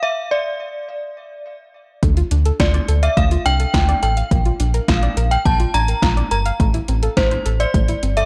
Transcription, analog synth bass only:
2.03 2.23 D2 loud
2.31 2.51 D2 medium
2.60 2.80 D2 loud
2.88 3.08 D2 loud
3.17 3.37 D2 loud
3.46 3.66 C2 medium
3.74 3.94 D2 loud
4.03 4.23 A1 loud
4.31 4.51 A#1 loud
4.60 4.80 A#1 loud
4.88 5.08 A#1 medium
5.17 5.37 A#1 loud
5.46 5.66 A#1 loud
5.74 5.94 A1 loud
6.02 6.23 A#1 loud
6.31 6.51 G1 medium
6.60 6.80 A1 loud
6.88 7.08 A1 loud
7.17 7.37 A1 loud
7.46 7.66 A1 medium
7.74 7.94 A1 loud
8.03 8.23 G1 medium

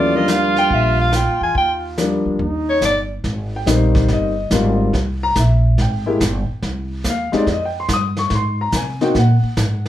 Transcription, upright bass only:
0.00 0.66 D#2 medium
0.70 1.23 A#1 medium
1.27 1.40 D#2 medium
1.41 1.54 E2 medium
1.55 2.22 D#2 medium
2.25 2.38 D2 medium
2.40 2.79 D#2 medium
2.81 3.21 G1 medium
3.24 3.65 G#1 medium
3.66 4.07 A#1 medium
4.08 4.49 G1 medium
4.51 4.92 G#1 loud
4.93 5.34 C2 medium
5.36 5.77 A#1 medium
5.78 6.19 G#1 medium
6.20 6.47 G1 medium
6.49 muted upright bass stroke soft
6.63 7.03 C2 medium
7.04 7.31 D#2 medium
7.33 muted upright bass stroke soft
7.46 7.88 F2 medium
7.88 8.30 G2 medium
8.30 8.72 G#2 medium
8.73 9.14 C3 medium
9.14 9.41 A#2 medium
9.43 muted upright bass stroke soft
9.57 9.88 G#2 medium

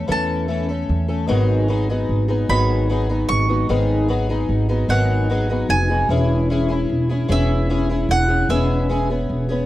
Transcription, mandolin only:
0.00 0.10 A5 medium
0.12 0.97 A5 medium
2.50 3.28 B5 medium
3.29 3.66 C#6 medium
4.90 5.66 F#5 medium
5.70 6.07 G#5 medium
7.32 8.07 E5 medium
8.11 8.48 F#5 medium
8.50 9.66 E5 medium

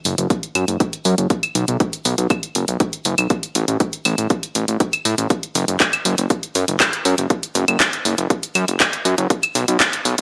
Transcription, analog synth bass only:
0.05 0.15 F#1 loud
0.18 0.27 F#1 medium
0.55 0.65 F#2 medium
0.68 0.77 F#1 medium
1.05 1.15 F#2 loud
1.18 1.27 F#1 medium
1.55 1.65 B1 loud
1.68 1.77 B1 medium
2.05 2.15 B1 loud
2.18 2.27 B1 medium
2.55 2.65 F#1 medium
2.68 2.77 B1 medium
3.05 3.15 F#1 loud
3.18 3.27 B1 medium
3.55 3.65 A1 loud
3.68 3.77 A1 medium
4.05 4.15 A1 loud
4.18 4.27 A1 medium
4.55 4.65 A1 loud
4.68 4.77 A1 medium
5.05 5.15 A2 medium
5.18 5.27 A1 medium
5.55 5.65 F#1 loud
5.68 5.77 F#1 medium
6.05 6.15 F#1 loud
6.18 6.27 F#1 medium
6.55 6.65 F#2 medium
6.68 6.77 F#1 medium
7.05 7.15 F#2 loud
7.18 7.27 F#1 medium
7.55 7.65 F#1 loud
7.68 7.77 F#1 medium
8.05 8.15 F#1 loud
8.18 8.27 F#1 medium
8.55 8.65 F#2 medium
8.68 8.77 F#1 medium
9.05 9.15 F#2 loud
9.18 9.27 F#1 medium
9.55 9.65 B1 loud
9.68 9.77 B1 medium
10.05 10.15 B1 loud

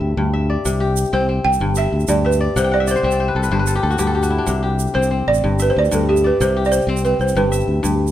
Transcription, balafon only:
1.14 1.43 C5 medium
1.45 1.74 G5 loud
1.78 2.10 E5 medium
2.09 2.23 D5 medium
2.26 2.55 B4 medium
2.58 2.73 C5 medium
2.74 2.89 D5 medium
2.91 3.04 C5 medium
3.06 3.50 C5 medium
4.95 5.25 C5 loud
5.28 5.57 D5 loud
5.62 5.69 B4 medium
5.70 5.73 C5 medium
5.79 5.92 D5 medium
5.95 6.09 A4 medium
6.09 6.25 G4 medium
6.27 6.41 B4 medium
6.41 6.65 C5 medium
6.66 6.73 D5 medium
6.72 7.04 C5 loud
7.05 7.19 B4 medium
7.21 7.36 C5 medium
7.37 7.96 B4 medium

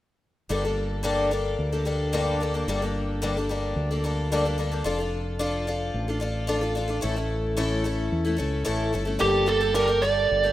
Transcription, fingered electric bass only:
0.50 1.55 G1 medium
1.59 2.64 D2 medium
2.68 3.73 G1 medium
3.76 4.81 D2 medium
4.85 5.90 F1 medium
5.94 6.99 A1 medium
7.04 8.08 A1 medium
8.12 8.37 E2 loud
8.40 8.64 C#2 medium
8.68 8.92 A1 medium
8.94 9.18 G1 medium
9.21 10.26 G1 medium
10.31 10.52 G1 medium

